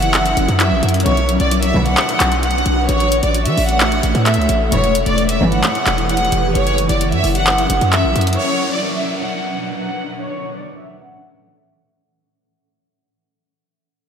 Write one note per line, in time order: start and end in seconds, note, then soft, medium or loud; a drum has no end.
0.00 0.35 F#1 loud
0.00 1.04 F#3 medium
0.00 1.04 C#4 medium
0.00 1.02 E4 medium
0.00 1.04 A#4 medium
0.00 0.56 F#5 medium
0.00 closed hi-hat medium
0.14 clap loud
0.14 closed hi-hat medium
0.26 closed hi-hat medium
0.37 0.48 F#1 loud
0.37 closed hi-hat medium
0.48 0.73 F#2 loud
0.48 closed hi-hat medium
0.60 0.81 E5 medium
0.60 clap loud
0.60 closed hi-hat medium
0.71 0.82 A#1 loud
0.83 1.05 F#2 loud
0.83 closed hi-hat medium
0.89 closed hi-hat medium
0.94 closed hi-hat medium
1.00 closed hi-hat medium
1.06 1.39 B1 loud
1.06 1.15 D2 medium
1.06 1.15 B2 medium
1.06 1.15 F#3 loud
1.06 2.87 D4 medium
1.06 2.87 F#4 medium
1.06 2.87 B4 medium
1.06 1.38 C#5 loud
1.06 closed hi-hat medium
1.17 closed hi-hat medium
1.29 closed hi-hat medium
1.40 1.73 B1 loud
1.40 1.62 D5 medium
1.40 closed hi-hat medium
1.51 closed hi-hat medium
1.63 1.84 E5 medium
1.63 closed hi-hat medium
1.74 1.96 B1 loud
1.74 1.94 D2 loud
1.74 1.94 B2 loud
1.74 1.94 F#3 loud
1.86 2.40 F#5 medium
1.86 closed hi-hat medium
1.97 clap loud
1.97 closed hi-hat medium
2.09 closed hi-hat medium
2.20 2.64 B1 loud
2.20 clap medium
2.20 closed hi-hat medium
2.32 closed hi-hat medium
2.43 2.86 F#5 medium
2.43 closed hi-hat medium
2.51 closed hi-hat medium
2.58 closed hi-hat soft
2.66 2.88 B1 loud
2.66 closed hi-hat medium
2.89 3.22 A1 loud
2.89 4.70 A3 medium
2.89 4.70 A4 medium
2.89 4.70 C#5 medium
2.89 3.21 C#5 loud
2.89 4.70 E5 medium
2.89 closed hi-hat medium
3.00 closed hi-hat medium
3.12 closed hi-hat medium
3.23 3.48 A1 loud
3.23 3.45 D5 medium
3.23 closed hi-hat medium
3.34 closed hi-hat medium
3.46 3.57 E3 loud
3.46 3.68 E5 medium
3.46 closed hi-hat medium
3.57 4.01 A1 loud
3.57 open hi-hat medium
3.69 4.23 F#5 medium
3.69 closed hi-hat medium
3.80 clap loud
3.80 closed hi-hat medium
3.92 closed hi-hat medium
4.03 4.14 A1 loud
4.03 closed hi-hat medium
4.15 4.39 A2 loud
4.15 closed hi-hat medium
4.26 4.48 E5 medium
4.26 clap medium
4.26 closed hi-hat medium
4.34 4.48 C#2 loud
4.34 closed hi-hat medium
4.42 closed hi-hat soft
4.49 4.71 A1 loud
4.49 closed hi-hat medium
4.72 5.05 E1 loud
4.72 4.82 B1 medium
4.72 4.82 G2 medium
4.72 4.82 E3 loud
4.72 6.53 E3 medium
4.72 8.35 E4 medium
4.72 6.53 G4 medium
4.72 6.53 B4 medium
4.72 5.04 C#5 medium
4.72 closed hi-hat medium
4.84 closed hi-hat medium
4.95 closed hi-hat medium
5.06 5.39 E1 loud
5.06 5.28 D5 medium
5.06 closed hi-hat medium
5.18 closed hi-hat medium
5.29 5.51 E5 medium
5.29 closed hi-hat medium
5.41 5.63 G1 loud
5.41 5.60 B1 loud
5.41 5.60 G2 loud
5.41 5.60 E3 loud
5.52 6.06 F#5 medium
5.52 closed hi-hat medium
5.64 clap loud
5.64 closed hi-hat medium
5.75 closed hi-hat medium
5.87 6.30 E1 loud
5.87 clap loud
5.87 closed hi-hat medium
5.98 closed hi-hat medium
6.09 6.52 F#5 medium
6.09 closed hi-hat medium
6.17 closed hi-hat medium
6.25 closed hi-hat soft
6.32 6.54 E1 loud
6.32 closed hi-hat medium
6.55 6.88 F#1 loud
6.55 8.37 F#3 medium
6.55 8.37 C#4 medium
6.55 8.37 A#4 medium
6.55 6.87 C#5 loud
6.55 closed hi-hat medium
6.67 closed hi-hat medium
6.78 closed hi-hat medium
6.89 7.14 F#1 loud
6.89 7.11 D5 medium
6.89 closed hi-hat medium
7.01 closed hi-hat medium
7.12 7.23 F#2 loud
7.12 7.34 E5 medium
7.12 closed hi-hat soft
7.24 7.68 F#1 loud
7.24 open hi-hat medium
7.35 7.89 F#5 medium
7.35 closed hi-hat medium
7.47 clap loud
7.47 closed hi-hat medium
7.58 closed hi-hat medium
7.70 7.81 F#1 loud
7.70 closed hi-hat medium
7.81 8.06 F#2 loud
7.81 closed hi-hat medium
7.93 8.14 E5 medium
7.93 clap loud
7.93 closed hi-hat medium
8.04 8.15 A#1 loud
8.16 8.38 F#2 loud
8.16 closed hi-hat medium
8.21 closed hi-hat medium
8.27 closed hi-hat medium
8.33 closed hi-hat medium
8.38 10.20 B2 medium
8.38 10.20 F#3 medium
8.38 10.20 D4 medium
8.38 10.20 B4 medium
8.38 8.71 C#5 loud
8.38 downlifter medium
8.73 8.94 D5 medium
8.96 9.17 E5 medium
9.18 9.72 F#5 medium
9.76 10.19 F#5 medium
10.22 12.03 A2 medium
10.22 12.03 E3 medium
10.22 12.03 C#4 medium
10.22 12.03 A4 medium
10.22 10.54 C#5 medium
10.56 10.78 D5 medium
10.79 11.00 E5 medium
11.02 11.56 F#5 medium
11.59 11.81 E5 medium